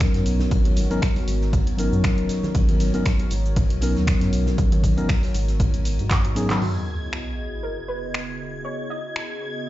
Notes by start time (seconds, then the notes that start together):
Already playing: F#3 B3 C#4 D#4 F#4 A#4 C#5
0.00 finger snap, kick, snare, closed hi-hat, ride, shaker
0.14 F#2, snare, closed hi-hat
0.26 B1, open hi-hat, ride, shaker
0.39 snare, high conga, shaker
0.51 G#1, kick, closed hi-hat, ride, shaker
0.65 closed hi-hat, low conga
0.76 open hi-hat, ride, high conga, shaker
0.90 G#1 F#3 B3 C#4 D#4 A#4, closed hi-hat, shaker
1.02 finger snap, kick, snare, closed hi-hat, ride, shaker
1.16 snare, open hi-hat, high conga
1.28 G#1, open hi-hat, ride, shaker
1.41 snare, shaker
1.53 kick, closed hi-hat, ride, high conga, shaker
1.67 closed hi-hat
1.77 G#1 F#3 B3 C#4 D#4 A#4, open hi-hat, ride, shaker
1.92 F#2, high conga, shaker
2.04 finger snap, kick, snare, closed hi-hat, ride, shaker
2.18 F#1, closed hi-hat
2.29 snare, open hi-hat, ride, shaker
2.43 snare, high conga, low conga, shaker
2.55 G#1, kick, closed hi-hat, ride, shaker
2.69 closed hi-hat, low conga
2.80 snare, open hi-hat, ride, high conga, shaker
2.93 G#1 F#3 B3 C#4 D#4 A#4, closed hi-hat, shaker
3.05 finger snap, kick, snare, closed hi-hat, ride, shaker
3.19 closed hi-hat, high conga
3.30 G#1, open hi-hat, ride, shaker
3.45 ride, shaker
3.56 kick, closed hi-hat, ride, high conga, shaker
3.70 B1, closed hi-hat
3.81 F#3 B3 C#4 D#4 A#4, open hi-hat, ride, shaker
3.95 D#2, snare, high conga, shaker
4.07 finger snap, kick, snare, closed hi-hat, ride, shaker
4.21 F#2, snare, closed hi-hat
4.33 B1, open hi-hat, ride, shaker
4.46 snare, high conga, shaker
4.58 G#1, kick, closed hi-hat, ride, shaker
4.72 closed hi-hat, low conga, shaker
4.83 kick, open hi-hat, ride, high conga, shaker
4.97 G#1 F#3 B3 C#4 D#4 A#4, closed hi-hat, shaker
5.09 finger snap, kick, snare, closed hi-hat, ride, shaker
5.23 snare, open hi-hat, high conga, shaker
5.34 G#1, open hi-hat, ride, shaker
5.48 snare, closed hi-hat, shaker
5.60 kick, closed hi-hat, ride, high conga, shaker
5.74 closed hi-hat, shaker
5.85 open hi-hat, ride, shaker
5.99 G#2, closed hi-hat, high conga, shaker
6.11 F#2, finger snap, kick, snare, clap, closed hi-hat, ride, shaker
6.25 G#2, closed hi-hat
6.36 F#3 B3 C#4 D#4 G#4, snare, open hi-hat, ride, shaker
6.49 F#3 B3 C#4 D#4 A#4, snare, clap, closed hi-hat, high conga, low conga, shaker
6.61 C#3 B3 E4 F#4 G#4 D#5 G#6, crash, sub drop
7.13 finger snap
7.63 A#4
7.88 B4
8.14 finger snap
8.65 C#5
8.90 D#5
9.16 finger snap